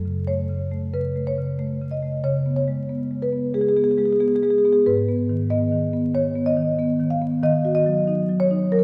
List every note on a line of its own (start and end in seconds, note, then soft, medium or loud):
0.00 0.90 F#2 soft
0.00 0.19 A3 soft
0.00 0.25 A4 medium
0.06 0.41 C#3 soft
0.27 0.62 A3 soft
0.27 0.91 C#5 medium
0.49 0.84 C#3 soft
0.72 1.07 A3 soft
0.94 1.29 C#3 soft
0.94 1.25 B4 medium
1.16 1.51 A3 soft
1.27 1.89 C#5 medium
1.38 1.73 C#3 soft
1.59 1.94 A3 soft
1.81 2.16 C#3 soft
1.91 2.22 D#5 medium
2.02 2.24 A3 soft
2.24 3.51 C#3 medium
2.24 2.55 C#5 medium
2.46 2.81 B3 soft
2.56 3.20 C#5 medium
2.68 3.03 G#3 soft
2.89 3.24 B3 soft
3.11 3.46 G#3 soft
3.22 3.53 B4 medium
3.33 3.67 B3 soft
3.54 3.89 G#3 soft
3.54 3.61 G#4 medium
3.61 3.69 G#4 medium
3.69 3.77 G#4 medium
3.76 4.11 B3 soft
3.76 3.84 G#4 medium
3.84 3.91 G#4 medium
3.91 3.98 G#4 medium
3.98 4.33 G#3 soft
3.98 4.06 G#4 medium
4.06 4.13 G#4 medium
4.13 4.21 G#4 medium
4.20 4.55 B3 soft
4.20 4.28 G#4 medium
4.28 4.36 G#4 medium
4.36 4.43 G#4 medium
4.42 4.77 G#3 soft
4.42 4.51 G#4 medium
4.51 4.58 G#4 medium
4.58 4.65 G#4 medium
4.65 4.86 B3 soft
4.65 4.73 G#4 medium
4.73 4.82 G#4 medium
4.86 6.11 G#2 medium
4.86 5.49 B4 medium
5.08 5.43 B3 soft
5.29 5.64 D#3 soft
5.50 5.85 B3 soft
5.50 6.12 D#5 medium
5.72 6.06 D#3 soft
5.93 6.27 B3 medium
6.14 6.48 D#3 soft
6.14 6.45 C#5 medium
6.36 6.70 B3 soft
6.46 7.08 D#5 medium
6.57 6.91 D#3 soft
6.79 7.13 B3 medium
7.00 7.34 D#3 soft
7.10 7.42 F5 medium
7.21 7.43 B3 soft
7.43 8.68 D#3 medium
7.43 7.74 D#5 loud
7.65 7.99 F#4 medium
7.75 8.37 D#5 medium
7.86 8.21 F#3 medium
8.07 8.42 D#4 medium
8.29 8.64 F#3 soft
8.40 8.71 C#5 medium
8.51 8.84 D#4 medium
8.72 8.84 F#3 medium
8.72 8.79 A#4 medium
8.79 8.84 A#4 medium